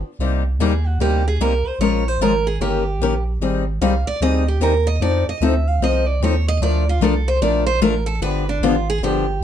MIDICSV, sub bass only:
0, 0, Header, 1, 2, 480
1, 0, Start_track
1, 0, Key_signature, -3, "minor"
1, 0, Tempo, 401070
1, 241, Time_signature, 4, 2, 24, 8
1, 11297, End_track
2, 0, Start_track
2, 0, Title_t, "Sub bass"
2, 0, Program_c, 0, 38
2, 227, Note_on_c, 0, 36, 88
2, 694, Note_off_c, 0, 36, 0
2, 701, Note_on_c, 0, 39, 95
2, 1176, Note_off_c, 0, 39, 0
2, 1183, Note_on_c, 0, 38, 83
2, 1657, Note_off_c, 0, 38, 0
2, 1664, Note_on_c, 0, 36, 78
2, 1953, Note_off_c, 0, 36, 0
2, 1962, Note_on_c, 0, 36, 43
2, 2055, Note_off_c, 0, 36, 0
2, 2137, Note_on_c, 0, 34, 82
2, 2609, Note_off_c, 0, 34, 0
2, 2617, Note_on_c, 0, 32, 81
2, 3093, Note_off_c, 0, 32, 0
2, 3106, Note_on_c, 0, 31, 85
2, 3564, Note_off_c, 0, 31, 0
2, 3571, Note_on_c, 0, 34, 91
2, 4050, Note_off_c, 0, 34, 0
2, 4065, Note_on_c, 0, 32, 89
2, 4537, Note_off_c, 0, 32, 0
2, 4559, Note_on_c, 0, 36, 90
2, 4841, Note_off_c, 0, 36, 0
2, 4862, Note_on_c, 0, 36, 39
2, 4950, Note_off_c, 0, 36, 0
2, 5032, Note_on_c, 0, 38, 82
2, 5494, Note_off_c, 0, 38, 0
2, 5501, Note_on_c, 0, 39, 81
2, 5975, Note_off_c, 0, 39, 0
2, 5985, Note_on_c, 0, 41, 88
2, 6273, Note_off_c, 0, 41, 0
2, 6294, Note_on_c, 0, 41, 42
2, 6384, Note_off_c, 0, 41, 0
2, 6468, Note_on_c, 0, 38, 93
2, 6938, Note_off_c, 0, 38, 0
2, 6944, Note_on_c, 0, 36, 73
2, 7416, Note_off_c, 0, 36, 0
2, 7423, Note_on_c, 0, 39, 88
2, 7896, Note_off_c, 0, 39, 0
2, 7905, Note_on_c, 0, 38, 93
2, 8373, Note_off_c, 0, 38, 0
2, 8380, Note_on_c, 0, 36, 91
2, 8854, Note_off_c, 0, 36, 0
2, 8870, Note_on_c, 0, 34, 86
2, 9331, Note_off_c, 0, 34, 0
2, 9338, Note_on_c, 0, 33, 84
2, 9814, Note_off_c, 0, 33, 0
2, 9822, Note_on_c, 0, 31, 94
2, 10296, Note_off_c, 0, 31, 0
2, 10301, Note_on_c, 0, 32, 99
2, 10772, Note_off_c, 0, 32, 0
2, 10779, Note_on_c, 0, 31, 72
2, 11254, Note_off_c, 0, 31, 0
2, 11260, Note_on_c, 0, 35, 94
2, 11297, Note_off_c, 0, 35, 0
2, 11297, End_track
0, 0, End_of_file